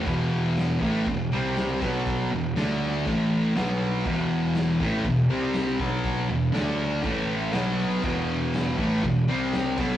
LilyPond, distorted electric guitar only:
\new Staff \with { instrumentName = "Distorted electric guitar" } { \clef bass \time 4/4 \key e \minor \tempo 4 = 120 <e, b, e>4. <a, e a>8 <e, b,>8 <c g c'>4 <b, fis b>8~ | <b, fis b>8 <e, b,>8 <d a d'>4 <a, e a>4 <b, fis b>4 | <e, b, e>4. <a, e a>8 <e, b,>8 <c g c'>4 <b, fis b>8~ | <b, fis b>8 <e, b,>8 <d a d'>4 <a, e a>4 <b, fis b>4 |
<e, b, e>4. <a, e a>8 <e, b,>8 <c g c'>4 <b, fis b>8 | }